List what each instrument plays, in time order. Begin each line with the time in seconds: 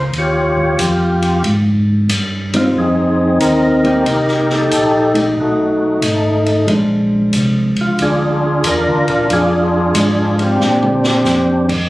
Already playing: tonewheel organ C#2
0.12 tonewheel organ D#2, ride
0.18 tonewheel organ F4 G4 C#5
0.57 kick
0.79 tonewheel organ F2, hi-hat pedal, ride
1.22 ride
1.44 tonewheel organ G#2, ride
2.09 tonewheel organ G2, hi-hat pedal, ride
2.54 hollow-body jazz guitar G3 C4 D#4, tonewheel organ F4, ride
2.75 tonewheel organ F2 C4 G#4
2.79 tonewheel organ D#4
3.40 tonewheel organ D#2 A#4, hi-hat pedal, ride
3.84 hollow-body jazz guitar G3 A#3 D#4, tonewheel organ D#4 G4 A#4, ride
4.06 tonewheel organ C2, ride
4.28 snare
4.50 tonewheel organ D#4 A4, snare
4.71 tonewheel organ A#1, hi-hat pedal, ride
5.14 hollow-body jazz guitar A3 D#4, tonewheel organ G4, ride
5.36 tonewheel organ B1 F#4
5.41 tonewheel organ A3 D#4
6.02 tonewheel organ G#1, hi-hat pedal, ride
6.46 ride
6.67 tonewheel organ A#1, hollow-body jazz guitar F3 G#3 D4, ride
7.33 tonewheel organ C2, hi-hat pedal, ride
7.76 tonewheel organ C2, ride
7.81 tonewheel organ F4
7.99 tonewheel organ D2 D4 F4 G#4, ride
8.64 tonewheel organ E2 A#4, hi-hat pedal, ride
8.86 tonewheel organ D2
9.08 tonewheel organ A#1 A#4, ride
9.30 tonewheel organ F2 D4 F4 G#4, ride
9.94 tonewheel organ G#2, hollow-body jazz guitar F3 G#3 D4, hi-hat pedal, ride
10.39 tonewheel organ C4 D4 G4, ride
10.60 tonewheel organ A#2, snare
10.82 mid tom
11.04 snare
11.24 tonewheel organ F2, snare, hi-hat pedal
11.69 kick, crash